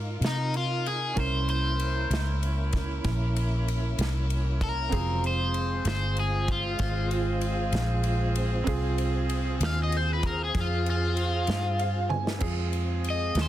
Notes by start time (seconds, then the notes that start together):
Already playing: G#2 D#4 F4 A#4 C6
0.21 C3, snare, ride
0.27 D#4
0.54 F4, ride
0.86 G#4, ride
1.14 C2 A#3 C#4 E4 A#4, kick, ride
1.20 C5
1.49 C5, ride
1.80 ride
2.10 C#2, snare, ride
2.43 ride
2.73 kick, snare, ride
3.04 A#1, kick, snare, ride
3.36 ride
3.68 ride
3.99 C2, snare, ride
4.30 ride
4.61 A#4, kick, ride
4.89 F1 C#3 F#3 G#3 C4 F4 G#4, kick, ride
5.23 G#3 C4 F4 C5, ride
5.54 ride
5.85 G1 C5, snare, ride
6.17 G#4, ride
6.48 F4, kick, ride
6.79 G#1, kick, snare, ride
7.11 ride
7.41 ride
7.72 A#1, snare, ride
8.04 ride
8.36 ride
8.64 C2 C4 F4 G#4, kick, ride
8.98 ride
9.30 ride
9.60 D#2, snare, ride
9.65 F5
9.83 D#5
9.92 ride
9.97 C5
10.13 B4
10.23 kick, ride
10.27 A#4
10.44 G#4
10.55 F2, kick, snare, ride
10.61 F4
10.86 F4, ride
11.17 ride
11.47 G2, snare, ride
11.79 F5, ride
12.09 B3 C4 G#5, high tom
12.15 D4 E4
12.21 F4 G4
12.27 A4 B4, snare
12.33 C5 D5
12.37 F2 G#3 C4 F4 G#4 E5, crash
12.41 C4 G#4, kick
12.73 ride
13.04 ride
13.10 D#5
13.35 D#2, snare, ride
13.42 C5